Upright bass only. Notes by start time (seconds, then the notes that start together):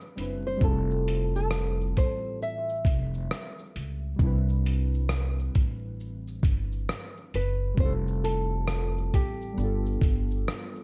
0.17 F#1
0.61 F1
1.98 A1
2.85 F1
3.76 C#2
4.19 C2
5.56 A1
6.43 G1
7.34 F#1
7.78 F1
9.14 A1
9.58 G1
10.02 G1